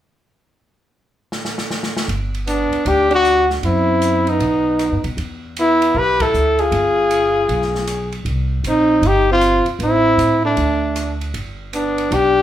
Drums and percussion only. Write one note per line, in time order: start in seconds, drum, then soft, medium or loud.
1.32 snare medium
1.45 snare medium
1.58 snare medium
1.71 snare medium
1.83 snare medium
1.97 snare medium
2.09 ride medium
2.34 ride soft
2.47 hi-hat pedal medium
2.47 ride medium
2.73 ride soft
2.86 ride medium
3.11 ride soft
3.25 cross-stick medium
3.25 hi-hat pedal soft
3.25 ride medium
3.50 snare soft
3.63 ride medium
4.02 hi-hat pedal soft
4.02 ride medium
4.27 ride soft
4.40 ride medium
4.79 cross-stick medium
4.79 hi-hat pedal soft
4.79 ride medium
5.04 ride soft
5.18 ride medium
5.57 hi-hat pedal medium
5.57 ride medium
5.82 ride medium
6.20 kick medium
6.20 ride medium
6.34 hi-hat pedal medium
6.59 ride soft
6.72 ride medium
7.11 hi-hat pedal soft
7.11 ride medium
7.49 ride medium
7.62 snare soft
7.75 snare soft
7.87 cross-stick medium
7.87 hi-hat pedal soft
7.87 ride medium
8.12 ride soft
8.26 ride medium
8.64 hi-hat pedal medium
8.64 ride medium
9.03 ride medium
9.41 cross-stick medium
9.41 hi-hat pedal medium
9.41 ride medium
9.66 ride soft
9.80 ride medium
10.19 hi-hat pedal medium
10.19 ride medium
10.57 ride medium
10.96 cross-stick medium
10.96 hi-hat pedal medium
10.96 ride medium
11.21 ride soft
11.34 ride medium
11.73 hi-hat pedal soft
11.73 ride medium
11.98 ride soft
12.12 ride medium